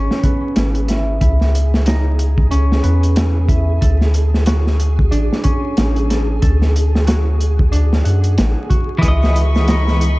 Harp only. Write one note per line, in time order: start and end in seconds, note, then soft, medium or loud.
0.00 2.50 C#4 loud
0.00 0.94 D#4 medium
0.00 0.47 A4 medium
0.23 2.83 B3 medium
0.88 1.20 E4 medium
1.21 1.92 E4 medium
1.86 3.54 D#4 medium
2.51 5.17 C#4 loud
2.83 5.94 B3 medium
3.48 6.09 E4 medium
3.81 6.00 A4 medium
4.46 6.90 F#4 medium
5.11 5.50 D4 medium
5.44 7.78 C#4 loud
6.09 6.41 A4 medium
6.42 8.61 A4 medium
7.07 8.69 F#4 medium
7.72 9.74 D4 medium
8.04 9.65 F#5 medium
8.69 10.19 F#4 medium
9.03 9.74 E4 medium
9.68 10.19 D#4 medium